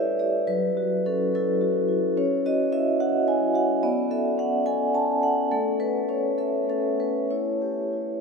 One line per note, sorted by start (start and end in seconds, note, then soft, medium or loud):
0.00 0.51 E4 medium
0.00 0.20 G4 soft
0.00 0.51 A4 medium
0.00 0.47 B4 medium
0.00 0.51 C#5 medium
0.00 0.19 D5 medium
0.00 0.20 E5 medium
0.19 0.48 G4 soft
0.19 0.48 D5 medium
0.47 2.12 F#3 medium
0.47 1.04 B4 medium
0.77 1.22 F#4 soft
1.06 1.51 C#4 soft
1.06 1.34 A4 medium
1.35 1.79 E4 soft
1.35 2.17 A4 medium
1.61 2.05 F#4 soft
1.89 2.16 E4 soft
2.17 3.80 C#4 medium
2.17 2.45 C#5 medium
2.46 2.90 F#4 soft
2.46 2.73 D#5 medium
2.72 3.17 E4 soft
2.72 3.00 E5 medium
3.00 3.45 F#4 soft
3.00 3.28 F#5 medium
3.28 3.73 E4 soft
3.28 3.56 G#5 medium
3.54 3.83 F#4 soft
3.54 3.84 F#5 medium
3.83 5.48 B3 medium
3.83 4.11 D5 medium
4.11 4.55 A4 soft
4.11 4.38 E5 medium
4.38 4.83 C#4 soft
4.38 4.67 F#5 medium
4.66 5.12 A4 soft
4.66 4.95 G#5 medium
4.95 5.41 C#4 soft
4.95 5.24 A5 medium
5.23 5.50 A4 soft
5.23 5.52 F#5 medium
5.52 7.26 A3 medium
5.52 5.79 A4 medium
5.80 6.27 A4 soft
5.80 6.09 B4 medium
6.09 6.57 C#4 soft
6.09 6.39 C#5 medium
6.38 6.68 A4 soft
6.38 6.69 E5 medium
6.69 7.18 C#4 soft
6.69 6.98 A4 medium
7.00 7.30 A4 soft
7.00 7.31 B4 medium
7.31 7.92 E4 soft
7.31 8.21 C#5 medium
7.62 8.11 G4 soft
7.93 8.21 E4 soft